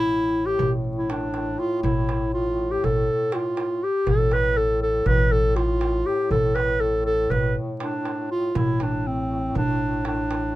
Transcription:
Already playing: upright bass A1, duduk A2, clarinet E4
0.46 clarinet G4
0.59 upright bass A1, darbuka dum
0.84 darbuka ka
0.97 clarinet E4
1.10 clarinet D4, darbuka tek
1.34 darbuka tek
1.59 clarinet F4
1.83 upright bass A1, clarinet E4, darbuka dum
2.09 darbuka tek
2.34 clarinet F4
2.58 darbuka ka
2.71 clarinet G4
2.84 upright bass A1, clarinet A4, darbuka dum
2.96 darbuka ka
3.07 darbuka ka
3.32 clarinet F4, darbuka tek
3.57 darbuka tek
3.83 clarinet G4
4.07 upright bass A1, duduk A2, clarinet A4, darbuka dum
4.31 clarinet B4, darbuka tek
4.57 clarinet A4
4.82 clarinet A4
5.06 upright bass A1, clarinet B4, darbuka dum
5.32 clarinet A4, darbuka ka
5.56 clarinet F4, darbuka tek
5.81 darbuka tek
6.06 clarinet G4
6.31 upright bass A1, clarinet A4, darbuka dum
6.55 clarinet B4, darbuka tek
6.81 clarinet A4
7.06 clarinet A4
7.30 upright bass A1, clarinet B4, darbuka dum
7.56 darbuka ka
7.80 clarinet D4, darbuka tek
8.05 darbuka tek
8.31 clarinet F4
8.54 upright bass A1, duduk A2, clarinet E4, darbuka dum
8.80 clarinet D4, darbuka tek
9.07 clarinet C4
9.55 upright bass A1, clarinet D4, darbuka dum
9.81 darbuka ka
10.05 clarinet D4, darbuka tek
10.31 darbuka tek

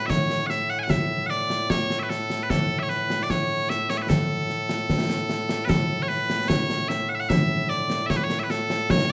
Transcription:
Already playing: bagpipes A2
0.06 bagpipes C#5 E5, concert bass drum, snare
0.30 snare
0.46 bagpipes E5 F#5, snare
0.70 bagpipes F#5
0.79 bagpipes G#5
0.83 bagpipes F#5
0.90 bagpipes E5, concert bass drum, snare
1.26 bagpipes D5 F#5, snare
1.50 snare
1.70 bagpipes C#5, concert bass drum, snare
1.90 snare
1.99 bagpipes B4 E5
2.10 bagpipes A4, snare
2.30 snare
2.43 bagpipes B4
2.50 bagpipes A4, concert bass drum, snare
2.79 bagpipes C#5 E5
2.89 bagpipes B4, snare
3.10 snare
3.23 bagpipes D5
3.30 bagpipes C#5, concert bass drum, snare
3.69 bagpipes E5, snare
3.90 bagpipes C#5, snare
3.98 bagpipes E5
4.02 bagpipes B4
4.09 bagpipes A4, concert bass drum, snare
4.50 snare
4.69 snare
4.90 concert bass drum, snare
5.10 snare
5.29 snare
5.49 snare
5.65 bagpipes B4
5.69 bagpipes A4, concert bass drum, snare
6.03 bagpipes C#5
6.08 bagpipes B4, snare
6.30 snare
6.48 bagpipes C#5, concert bass drum, snare
6.70 snare
6.88 bagpipes E5, snare
7.09 bagpipes F#5
7.15 bagpipes E5
7.20 bagpipes F#5
7.29 bagpipes E5, concert bass drum, snare
7.69 bagpipes D5, snare
7.90 snare
8.06 bagpipes C#5 E5, concert bass drum, snare
8.16 bagpipes B4
8.24 bagpipes C#5
8.30 snare
8.39 bagpipes E5
8.44 bagpipes B4
8.50 bagpipes A4, snare
8.70 snare
8.90 bagpipes C#5, concert bass drum, snare

